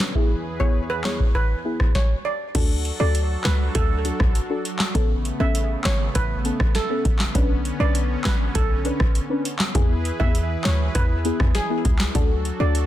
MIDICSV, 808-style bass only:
0, 0, Header, 1, 2, 480
1, 0, Start_track
1, 0, Tempo, 600000
1, 120, Time_signature, 4, 2, 24, 8
1, 10290, End_track
2, 0, Start_track
2, 0, Title_t, "808-style bass"
2, 0, Program_c, 0, 38
2, 2039, Note_on_c, 0, 38, 103
2, 2331, Note_off_c, 0, 38, 0
2, 2401, Note_on_c, 0, 38, 95
2, 2692, Note_off_c, 0, 38, 0
2, 2760, Note_on_c, 0, 37, 95
2, 2954, Note_off_c, 0, 37, 0
2, 3001, Note_on_c, 0, 38, 119
2, 3292, Note_off_c, 0, 38, 0
2, 3362, Note_on_c, 0, 35, 92
2, 3459, Note_off_c, 0, 35, 0
2, 3960, Note_on_c, 0, 33, 113
2, 4251, Note_off_c, 0, 33, 0
2, 4320, Note_on_c, 0, 33, 97
2, 4611, Note_off_c, 0, 33, 0
2, 4679, Note_on_c, 0, 32, 96
2, 4874, Note_off_c, 0, 32, 0
2, 4922, Note_on_c, 0, 33, 97
2, 5212, Note_off_c, 0, 33, 0
2, 5283, Note_on_c, 0, 33, 83
2, 5379, Note_off_c, 0, 33, 0
2, 5641, Note_on_c, 0, 33, 91
2, 5835, Note_off_c, 0, 33, 0
2, 5880, Note_on_c, 0, 35, 107
2, 6171, Note_off_c, 0, 35, 0
2, 6239, Note_on_c, 0, 35, 99
2, 6531, Note_off_c, 0, 35, 0
2, 6599, Note_on_c, 0, 33, 99
2, 6794, Note_off_c, 0, 33, 0
2, 6841, Note_on_c, 0, 35, 110
2, 7132, Note_off_c, 0, 35, 0
2, 7202, Note_on_c, 0, 33, 98
2, 7298, Note_off_c, 0, 33, 0
2, 7800, Note_on_c, 0, 40, 107
2, 8091, Note_off_c, 0, 40, 0
2, 8162, Note_on_c, 0, 40, 100
2, 8453, Note_off_c, 0, 40, 0
2, 8520, Note_on_c, 0, 38, 97
2, 8714, Note_off_c, 0, 38, 0
2, 8761, Note_on_c, 0, 40, 106
2, 9052, Note_off_c, 0, 40, 0
2, 9123, Note_on_c, 0, 40, 90
2, 9219, Note_off_c, 0, 40, 0
2, 9480, Note_on_c, 0, 37, 93
2, 9675, Note_off_c, 0, 37, 0
2, 9720, Note_on_c, 0, 38, 103
2, 10011, Note_off_c, 0, 38, 0
2, 10079, Note_on_c, 0, 38, 95
2, 10290, Note_off_c, 0, 38, 0
2, 10290, End_track
0, 0, End_of_file